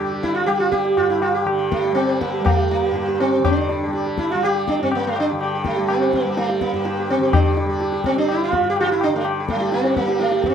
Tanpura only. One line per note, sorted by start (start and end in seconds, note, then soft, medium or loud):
0.00 0.96 G2 medium
0.00 1.44 D3 medium
0.00 0.47 G3 medium
0.47 1.93 G3 medium
0.96 2.90 G2 medium
1.44 3.38 D3 medium
1.93 2.41 G3 medium
2.41 3.87 G3 medium
2.90 4.81 G2 medium
3.39 5.31 D3 medium
3.87 4.34 G3 medium
4.34 5.78 G3 medium
4.82 6.72 G2 medium
5.32 7.18 D3 medium
5.78 6.24 G3 medium
6.24 7.66 G3 medium
6.72 8.60 G2 medium
7.18 9.07 D3 medium
7.66 8.13 G3 medium
8.13 9.55 G3 medium
8.60 10.46 G2 medium
9.07 10.54 D3 medium
9.55 9.99 G3 medium
9.99 10.54 G3 medium
10.47 10.54 G2 medium